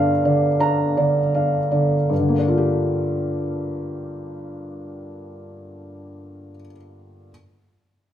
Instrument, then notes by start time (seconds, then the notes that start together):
felt piano
Already playing: G1 G2 D3 D4 D5 F5 A#5
0.24 D3 D5
0.60 D4 A#5
0.97 D3 D5
1.35 D4 F5
1.71 D3 D5
2.09 G2
2.19 D3
2.29 A#3
2.38 D4
2.48 F4
2.58 G4